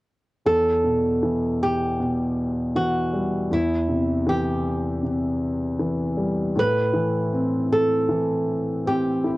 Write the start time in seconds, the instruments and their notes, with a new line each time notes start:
0.46 grand piano E2, nylon-string guitar A4
0.84 grand piano B2
1.23 grand piano E3
1.63 nylon-string guitar G4
2.00 grand piano B2
2.76 grand piano E3, nylon-string guitar F#4
3.13 grand piano G3
3.51 grand piano E2, nylon-string guitar E4
3.89 grand piano C3
4.27 grand piano E3, nylon-string guitar G4
5.03 grand piano C3
5.79 grand piano E3
6.17 grand piano G3
6.55 grand piano A2, nylon-string guitar B4
6.93 grand piano E3
7.32 grand piano C4
7.72 nylon-string guitar A4
8.09 grand piano E3
8.86 grand piano C4, nylon-string guitar G4
9.24 grand piano E4